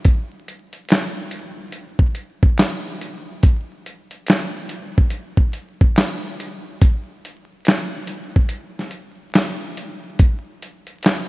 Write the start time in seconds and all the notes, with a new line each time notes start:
0.05 kick, closed hi-hat
0.48 closed hi-hat
0.73 closed hi-hat
0.89 snare, clap, closed hi-hat
1.31 closed hi-hat
1.72 closed hi-hat
1.99 kick
2.15 closed hi-hat
2.43 kick
2.59 snare, clap, closed hi-hat
3.01 closed hi-hat
3.43 kick, closed hi-hat
3.86 closed hi-hat
4.11 closed hi-hat
4.27 snare, clap, closed hi-hat
4.69 closed hi-hat
4.98 kick
5.10 closed hi-hat
5.37 kick
5.53 closed hi-hat
5.81 kick
5.97 snare, clap, closed hi-hat
6.40 closed hi-hat
6.81 kick, closed hi-hat
7.25 closed hi-hat
7.65 snare, clap, closed hi-hat
8.07 closed hi-hat
8.36 kick
8.49 closed hi-hat
8.79 snare
8.91 closed hi-hat
9.35 snare, clap, closed hi-hat
9.77 closed hi-hat
10.19 kick, closed hi-hat
10.62 closed hi-hat
10.87 closed hi-hat
11.03 snare, clap, closed hi-hat